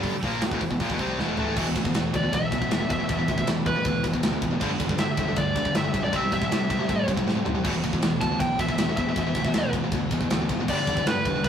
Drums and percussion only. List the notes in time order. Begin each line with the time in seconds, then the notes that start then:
0.03 kick, open hi-hat
0.23 kick, open hi-hat
0.41 snare, open hi-hat
0.51 kick
0.61 kick, open hi-hat
0.71 kick
0.80 kick, open hi-hat
0.90 kick
0.99 kick, open hi-hat
1.19 snare
1.37 floor tom
1.56 kick, crash
1.76 kick, ride
1.85 kick
1.94 snare, ride
2.14 kick, ride
2.33 kick, ride
2.52 kick, ride
2.62 kick
2.71 snare, ride
2.90 kick, ride
3.09 kick, ride
3.28 kick, ride
3.38 kick
3.47 snare, ride
3.66 kick, ride
3.85 kick, ride
4.04 kick, ride
4.14 kick
4.23 snare, ride
4.42 kick, ride
4.61 kick, crash
4.80 kick, ride
4.89 kick
4.98 snare, ride
5.17 kick, ride
5.36 kick, ride
5.56 kick, ride
5.65 kick
5.75 snare, ride
5.94 kick, ride
6.13 kick, ride
6.32 kick, ride
6.42 kick
6.52 snare, ride
6.70 kick, ride
6.89 kick, ride
7.08 kick, ride
7.17 kick
7.28 snare
7.46 floor tom
7.65 kick, crash
7.84 kick, ride
7.93 kick
8.02 snare, ride
8.21 kick, ride
8.40 kick, ride
8.59 kick, ride
8.69 kick
8.78 snare, ride
8.97 kick, ride
9.16 kick, ride
9.35 kick, ride
9.45 kick
9.54 snare, ride
9.73 kick, ride
9.92 kick, ride
10.11 kick, ride
10.21 kick
10.30 snare, ride
10.49 kick, ride
10.68 kick, crash
10.87 kick, ride
10.97 kick
11.06 snare, ride
11.25 kick, ride
11.44 kick, ride